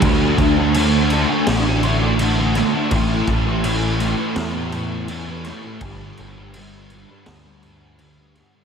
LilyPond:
<<
  \new Staff \with { instrumentName = "Distorted electric guitar" } { \clef bass \time 4/4 \key d \mixolydian \tempo 4 = 83 <d a d'>8 <d a d'>16 <a d'>16 <d a d'>8 <d a d'>16 <a d'>8 <a d'>16 <d a d'>8 <d a d'>16 <a d'>16 <d a d'>16 <a d'>16 | <a, e a>8 <a, e a>16 <e a>16 <a, e a>8 <a, e a>16 <e a>8 <e a>16 <a, e a>8 <a, e a>16 <e a>16 <a, e a>16 <e a>16 | <g, d g>8 <g, d g>16 <d g>16 <g, d g>8 <g, d g>16 <d g>8 <d g>16 <g, d g>8 <g, d g>16 <d g>16 <g, d g>16 <d g>16 | }
  \new Staff \with { instrumentName = "Picked electric bass" } { \clef bass \time 4/4 \key d \mixolydian d,8 d,4. a,,2 | a,,8 a,,4. e,2 | g,,8 g,,4. d,2 | }
  \new DrumStaff \with { instrumentName = "Drums" } \drummode { \time 4/4 <cymc bd>8 <cymc bd>8 cymc8 cymc8 <cymc sn>8 cymc8 cymc8 <cymc sn>8 | <cymc bd>8 <cymc bd>8 cymc8 cymc8 <cymc sn>8 cymc8 cymc8 <cymc sn>8 | <cymc bd>8 cymc8 cymc8 cymc8 <cymc sn>8 cymc8 cymc8 <cymc sn>8 | }
>>